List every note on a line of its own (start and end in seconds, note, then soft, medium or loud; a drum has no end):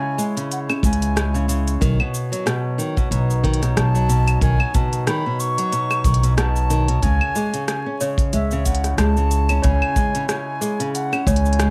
0.00 0.17 C#3 medium
0.00 1.81 C#3 medium
0.00 1.81 G#3 medium
0.00 1.81 E4 medium
0.00 11.70 C#5 medium
0.00 0.23 G#5 medium
0.18 0.35 G#3 medium
0.18 shaker medium
0.37 0.67 C#3 medium
0.37 closed hi-hat soft
0.37 shaker soft
0.52 0.60 F#5 medium
0.52 closed hi-hat medium
0.52 shaker soft
0.69 0.82 C#4 medium
0.69 cross-stick soft
0.69 claves medium
0.69 shaker soft
0.83 1.78 C#2 medium
0.83 1.15 C#3 medium
0.83 1.45 G#5 medium
0.83 kick loud
0.83 closed hi-hat soft
0.83 shaker medium
0.93 closed hi-hat medium
1.02 closed hi-hat soft
1.02 shaker soft
1.16 1.32 G#3 medium
1.16 cross-stick loud
1.16 closed hi-hat medium
1.16 shaker medium
1.34 1.47 C#3 medium
1.34 shaker soft
1.48 1.80 C#3 medium
1.48 closed hi-hat soft
1.48 shaker medium
1.68 closed hi-hat soft
1.68 shaker soft
1.81 1.97 B1 loud
1.81 7.04 B2 medium
1.81 1.98 D#3 loud
1.81 kick loud
1.81 closed hi-hat medium
1.81 shaker soft
1.99 2.30 B2 medium
1.99 claves medium
2.14 shaker medium
2.32 2.45 F#3 medium
2.32 closed hi-hat soft
2.32 shaker soft
2.46 2.77 B2 medium
2.46 7.04 F#3 medium
2.46 cross-stick loud
2.46 closed hi-hat medium
2.46 shaker soft
2.78 2.95 D#3 medium
2.78 shaker medium
2.97 3.10 B2 medium
2.97 kick medium
2.97 shaker soft
3.11 3.73 B1 medium
3.11 3.43 B2 medium
3.11 7.04 D#4 medium
3.11 closed hi-hat medium
3.11 shaker soft
3.30 shaker soft
3.43 3.60 D#3 loud
3.43 kick medium
3.43 closed hi-hat soft
3.53 closed hi-hat soft
3.62 3.93 B2 medium
3.62 cross-stick soft
3.62 closed hi-hat soft
3.62 shaker soft
3.77 4.39 B1 medium
3.77 4.39 A5 loud
3.77 cross-stick loud
3.77 closed hi-hat medium
3.77 shaker soft
3.95 4.08 F#3 medium
3.95 shaker soft
4.09 4.40 B2 medium
4.09 closed hi-hat soft
4.09 shaker medium
4.28 closed hi-hat soft
4.28 claves medium
4.28 shaker soft
4.41 4.57 B1 loud
4.41 4.58 D#3 medium
4.41 4.77 G#5 loud
4.41 kick loud
4.41 closed hi-hat medium
4.41 shaker soft
4.59 4.73 B2 medium
4.59 claves medium
4.74 5.06 B2 medium
4.74 5.07 A5 loud
4.74 kick loud
4.74 closed hi-hat soft
4.74 shaker medium
4.93 closed hi-hat soft
4.93 shaker soft
5.07 5.23 D#3 loud
5.07 5.41 B5 loud
5.07 cross-stick loud
5.07 closed hi-hat soft
5.07 shaker soft
5.26 5.57 B2 medium
5.40 6.36 C#6 loud
5.40 shaker medium
5.58 5.71 F#3 medium
5.58 closed hi-hat soft
5.58 shaker soft
5.72 6.04 B2 medium
5.72 closed hi-hat medium
5.72 shaker soft
5.91 cross-stick soft
5.91 claves medium
5.91 shaker soft
6.04 6.99 B1 medium
6.04 6.22 D#3 medium
6.04 kick loud
6.04 closed hi-hat soft
6.04 shaker medium
6.14 closed hi-hat soft
6.23 6.36 B2 medium
6.23 closed hi-hat soft
6.23 shaker soft
6.37 6.69 B2 medium
6.37 7.04 A5 loud
6.37 cross-stick loud
6.37 closed hi-hat medium
6.37 shaker soft
6.56 shaker soft
6.70 6.87 D#3 medium
6.70 closed hi-hat soft
6.70 shaker medium
6.88 7.02 B2 medium
6.88 closed hi-hat soft
7.02 7.18 C#2 medium
7.02 7.34 C#3 medium
7.02 11.70 C#3 medium
7.02 7.68 G#5 loud
7.02 kick loud
7.02 closed hi-hat medium
7.02 shaker soft
7.21 claves medium
7.35 7.52 G#3 loud
7.35 7.67 G#4 medium
7.35 shaker medium
7.54 7.85 C#3 medium
7.54 closed hi-hat soft
7.54 shaker soft
7.68 8.04 G#5 medium
7.68 cross-stick medium
7.68 closed hi-hat soft
7.68 shaker soft
7.86 7.99 C#4 medium
7.98 8.32 C#3 medium
7.98 11.70 G#3 medium
7.98 8.32 C#5 medium
7.98 shaker medium
8.18 kick loud
8.18 closed hi-hat soft
8.18 shaker soft
8.33 8.95 C#2 medium
8.33 8.50 G#3 medium
8.33 8.67 E5 medium
8.33 closed hi-hat medium
8.33 shaker soft
8.51 8.65 C#3 medium
8.51 shaker soft
8.66 8.97 C#3 medium
8.66 8.98 F#5 medium
8.66 kick medium
8.66 closed hi-hat soft
8.66 shaker medium
8.75 closed hi-hat soft
8.80 11.70 E4 medium
8.84 cross-stick soft
8.84 closed hi-hat soft
8.84 shaker soft
8.98 9.60 C#2 medium
8.98 9.15 G#3 loud
8.98 9.29 G#4 medium
8.98 9.65 A5 loud
8.98 cross-stick loud
8.98 closed hi-hat medium
8.98 shaker soft
9.17 9.48 C#3 medium
9.17 shaker soft
9.31 closed hi-hat soft
9.31 shaker medium
9.49 9.62 C#4 medium
9.49 closed hi-hat soft
9.49 claves medium
9.49 shaker soft
9.62 9.80 C#2 loud
9.62 9.95 C#3 medium
9.62 9.94 C#5 medium
9.62 10.28 G#5 loud
9.62 kick medium
9.62 closed hi-hat medium
9.62 shaker soft
9.82 claves medium
9.96 10.13 G#3 medium
9.96 kick loud
9.96 shaker medium
10.15 10.28 C#3 medium
10.15 closed hi-hat soft
10.15 shaker soft
10.28 10.60 C#3 medium
10.28 10.90 G#5 medium
10.28 cross-stick medium
10.28 closed hi-hat medium
10.28 shaker soft
10.61 10.78 G#3 loud
10.61 10.93 G#4 medium
10.61 shaker medium
10.80 11.11 C#3 medium
10.80 closed hi-hat soft
10.80 shaker soft
10.94 11.29 F#5 medium
10.94 closed hi-hat medium
10.94 shaker soft
11.12 11.25 C#4 medium
11.12 cross-stick soft
11.12 claves medium
11.12 shaker soft
11.27 11.70 C#2 loud
11.27 11.58 C#3 medium
11.27 11.58 C#5 loud
11.27 11.70 G#5 medium
11.27 kick medium
11.27 closed hi-hat soft
11.27 shaker medium
11.36 closed hi-hat soft
11.45 shaker soft
11.53 closed hi-hat soft
11.59 11.70 G#3 medium
11.59 cross-stick loud
11.59 closed hi-hat medium
11.59 shaker soft